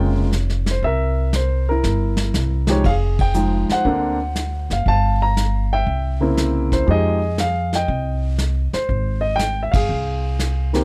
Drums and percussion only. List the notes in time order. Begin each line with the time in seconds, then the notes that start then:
0.32 snare, hi-hat pedal
0.50 snare
0.66 snare
0.83 brush sweep, kick
1.33 snare, hi-hat pedal
1.84 snare
2.17 snare
2.34 snare, hi-hat pedal
2.67 snare
2.84 brush sweep, kick, ride
3.19 kick, ride
3.34 hi-hat pedal
3.70 snare
3.85 brush sweep, kick
4.36 snare, hi-hat pedal
4.70 snare
4.86 brush sweep, kick
5.37 snare, hi-hat pedal
5.87 brush sweep, kick
6.37 snare, hi-hat pedal
6.72 kick, snare
6.88 brush sweep, kick
7.38 snare, hi-hat pedal
7.73 snare
7.88 brush sweep, kick
8.38 snare, hi-hat pedal
8.73 snare
8.89 brush sweep, kick
9.39 snare, hi-hat pedal
9.74 kick, ride
9.89 brush sweep
10.39 snare, hi-hat pedal
10.74 snare